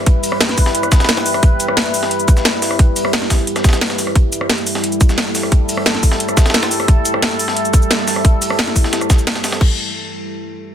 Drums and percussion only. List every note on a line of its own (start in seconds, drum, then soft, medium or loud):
0.06 kick loud
0.06 closed hi-hat medium
0.24 closed hi-hat medium
0.24 open hi-hat medium
0.24 cabasa medium
0.32 cross-stick medium
0.41 snare loud
0.41 closed hi-hat loud
0.41 closed hi-hat medium
0.49 snare soft
0.49 closed hi-hat soft
0.58 kick medium
0.58 closed hi-hat medium
0.58 open hi-hat medium
0.58 cabasa medium
0.66 snare medium
0.75 closed hi-hat medium
0.83 cross-stick soft
0.83 closed hi-hat soft
0.83 cabasa soft
0.92 kick loud
0.92 snare loud
0.92 closed hi-hat medium
0.92 cabasa medium
1.00 snare medium
1.00 closed hi-hat medium
1.00 cabasa soft
1.04 snare medium
1.04 closed hi-hat medium
1.09 snare loud
1.09 closed hi-hat loud
1.17 cross-stick soft
1.17 snare loud
1.17 closed hi-hat medium
1.17 closed hi-hat soft
1.26 open hi-hat medium
1.26 cabasa medium
1.34 cross-stick soft
1.34 closed hi-hat medium
1.43 kick loud
1.43 closed hi-hat medium
1.60 closed hi-hat medium
1.60 cabasa medium
1.68 cross-stick medium
1.77 snare loud
1.77 closed hi-hat medium
1.85 closed hi-hat soft
1.94 closed hi-hat medium
1.94 open hi-hat medium
1.94 cabasa medium
2.03 snare medium
2.11 closed hi-hat medium
2.20 closed hi-hat soft
2.20 cabasa soft
2.28 kick loud
2.28 closed hi-hat medium
2.28 cabasa medium
2.37 snare soft
2.37 cabasa soft
2.45 snare loud
2.45 closed hi-hat medium
2.62 snare soft
2.62 closed hi-hat medium
2.62 open hi-hat medium
2.62 cabasa medium
2.71 cross-stick soft
2.79 kick loud
2.79 closed hi-hat medium
2.96 closed hi-hat medium
2.96 open hi-hat medium
2.96 cabasa medium
3.05 cross-stick medium
3.13 snare loud
3.13 closed hi-hat medium
3.22 snare soft
3.22 closed hi-hat soft
3.30 kick medium
3.30 snare loud
3.30 closed hi-hat medium
3.30 open hi-hat medium
3.30 cabasa medium
3.39 closed hi-hat soft
3.47 closed hi-hat medium
3.56 cross-stick soft
3.56 snare medium
3.56 closed hi-hat soft
3.56 cabasa soft
3.64 kick loud
3.64 snare medium
3.64 closed hi-hat medium
3.64 cabasa medium
3.69 snare medium
3.69 closed hi-hat medium
3.73 snare loud
3.73 closed hi-hat medium
3.73 cabasa soft
3.81 snare loud
3.81 closed hi-hat medium
3.90 cross-stick soft
3.90 snare loud
3.90 closed hi-hat soft
3.90 closed hi-hat medium
3.98 snare soft
3.98 closed hi-hat medium
3.98 open hi-hat medium
3.98 cabasa medium
4.07 cross-stick soft
4.16 kick loud
4.16 closed hi-hat medium
4.32 closed hi-hat medium
4.32 cabasa medium
4.41 cross-stick medium
4.50 snare loud
4.50 closed hi-hat medium
4.58 closed hi-hat soft
4.67 closed hi-hat medium
4.67 open hi-hat medium
4.67 cabasa medium
4.75 snare medium
4.84 closed hi-hat medium
4.92 closed hi-hat soft
4.92 cabasa soft
5.01 kick loud
5.01 closed hi-hat medium
5.01 cabasa medium
5.09 snare soft
5.09 cabasa soft
5.18 snare loud
5.18 closed hi-hat medium
5.35 snare soft
5.35 closed hi-hat medium
5.35 open hi-hat medium
5.35 cabasa medium
5.43 cross-stick soft
5.52 kick loud
5.52 closed hi-hat medium
5.69 closed hi-hat medium
5.69 open hi-hat medium
5.69 cabasa medium
5.77 cross-stick medium
5.86 snare loud
5.86 closed hi-hat medium
5.95 snare soft
5.95 closed hi-hat soft
6.03 kick medium
6.03 closed hi-hat medium
6.03 open hi-hat medium
6.03 cabasa medium
6.12 snare medium
6.20 closed hi-hat medium
6.29 cross-stick soft
6.29 closed hi-hat soft
6.29 cabasa soft
6.37 kick loud
6.37 snare loud
6.37 closed hi-hat medium
6.37 cabasa medium
6.46 snare medium
6.46 closed hi-hat medium
6.46 cabasa soft
6.50 snare medium
6.50 closed hi-hat medium
6.54 snare loud
6.54 closed hi-hat medium
6.63 cross-stick soft
6.63 snare loud
6.63 closed hi-hat medium
6.63 closed hi-hat soft
6.71 open hi-hat medium
6.71 cabasa medium
6.80 cross-stick soft
6.80 closed hi-hat medium
6.88 kick loud
6.88 closed hi-hat medium
7.05 closed hi-hat medium
7.05 cabasa medium
7.14 cross-stick medium
7.22 snare loud
7.22 closed hi-hat medium
7.22 closed hi-hat loud
7.31 closed hi-hat soft
7.39 closed hi-hat medium
7.39 open hi-hat medium
7.39 cabasa medium
7.48 snare medium
7.56 closed hi-hat medium
7.65 closed hi-hat soft
7.65 cabasa soft
7.73 kick loud
7.73 closed hi-hat medium
7.73 cabasa medium
7.82 cabasa soft
7.90 snare loud
7.90 closed hi-hat medium
7.90 closed hi-hat loud
7.99 snare soft
8.08 snare soft
8.08 closed hi-hat medium
8.08 open hi-hat medium
8.08 cabasa medium
8.16 cross-stick soft
8.25 kick loud
8.25 closed hi-hat medium
8.25 closed hi-hat loud
8.42 closed hi-hat medium
8.42 open hi-hat medium
8.42 cabasa medium
8.50 cross-stick medium
8.59 snare loud
8.59 closed hi-hat loud
8.67 snare soft
8.67 closed hi-hat soft
8.76 kick medium
8.76 closed hi-hat medium
8.76 open hi-hat medium
8.76 cabasa medium
8.84 snare medium
8.93 snare loud
8.93 closed hi-hat medium
8.93 closed hi-hat loud
9.01 cross-stick soft
9.01 closed hi-hat soft
9.01 cabasa soft
9.10 kick loud
9.10 snare loud
9.10 closed hi-hat medium
9.10 cabasa medium
9.18 closed hi-hat soft
9.18 cabasa soft
9.27 snare loud
9.27 closed hi-hat medium
9.27 closed hi-hat loud
9.35 cross-stick soft
9.35 snare loud
9.35 closed hi-hat medium
9.35 closed hi-hat soft
9.44 snare loud
9.44 closed hi-hat medium
9.44 open hi-hat medium
9.44 cabasa medium
9.52 cross-stick soft
9.52 snare loud
9.52 closed hi-hat medium
9.61 kick loud
9.61 crash medium